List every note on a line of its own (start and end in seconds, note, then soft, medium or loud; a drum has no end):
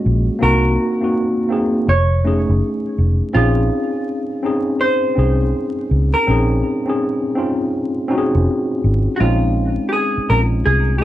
0.00 0.42 G#3 medium
0.00 0.39 A#3 medium
0.00 0.43 C#4 medium
0.00 0.17 F#4 medium
0.00 0.43 G#4 medium
0.00 0.42 D#5 loud
0.06 0.28 A#1 medium
0.39 0.76 C2 loud
0.39 0.83 A#3 medium
0.39 0.84 C4 medium
0.39 0.84 D#4 medium
0.39 0.85 F#4 loud
0.39 1.89 A#4 loud
1.01 1.41 A#3 medium
1.01 1.42 C4 medium
1.01 1.42 D#4 medium
1.01 1.43 F#4 medium
1.49 1.86 A#3 medium
1.49 1.87 C4 medium
1.49 1.88 D#4 medium
1.49 1.88 G#4 medium
1.88 2.45 F1 loud
1.88 2.94 C#5 medium
2.24 3.10 A3 medium
2.24 3.11 C#4 medium
2.24 3.11 D#4 medium
2.24 3.12 G#4 loud
2.49 2.60 F#1 medium
2.98 3.20 F1 medium
3.34 3.69 A#1 loud
3.34 4.20 C4 loud
3.34 4.20 C#4 medium
3.34 4.21 D#4 loud
3.34 4.85 F4 medium
3.34 4.22 G#4 loud
4.43 5.04 C4 medium
4.43 5.05 C#4 medium
4.43 5.05 D#4 medium
4.43 5.06 G#4 medium
4.81 6.10 C5 loud
5.15 5.52 C2 medium
5.15 6.02 C4 medium
5.15 6.03 C#4 medium
5.15 6.03 D#4 medium
5.15 6.04 G#4 medium
5.91 6.13 C#2 medium
6.14 8.42 A#4 medium
6.27 6.62 A#1 loud
6.27 6.70 C4 loud
6.27 6.71 C#4 medium
6.27 6.71 D#4 loud
6.27 6.72 G#4 loud
6.86 7.26 C4 medium
6.86 7.27 C#4 medium
6.86 7.28 D#4 medium
6.86 7.28 G#4 medium
7.35 7.97 C4 medium
7.35 7.97 C#4 medium
7.35 7.98 D#4 medium
7.35 7.98 F4 medium
8.08 8.95 C4 loud
8.08 8.95 C#4 medium
8.08 8.96 D#4 medium
8.08 8.19 F#4 medium
8.18 9.00 G#4 loud
8.35 8.46 F1 medium
8.84 9.06 G#1 medium
9.16 10.05 G#3 medium
9.16 9.20 F#4 medium
9.20 9.77 A#1 loud
9.20 10.06 C4 medium
9.20 10.07 C#4 medium
9.20 10.07 D#4 loud
9.20 9.88 F4 medium
9.89 9.92 G4 medium
9.89 10.30 G#4 loud
10.18 muted fingered electric bass stroke soft
10.29 10.64 A#1 medium
10.29 10.90 G#3 medium
10.29 10.91 C4 medium
10.29 10.91 C#4 medium
10.29 10.92 F4 medium
10.29 10.39 A#4 loud
10.65 11.00 C2 medium
10.65 10.98 G#4 loud
10.98 11.04 G#3 medium
10.98 11.02 G4 medium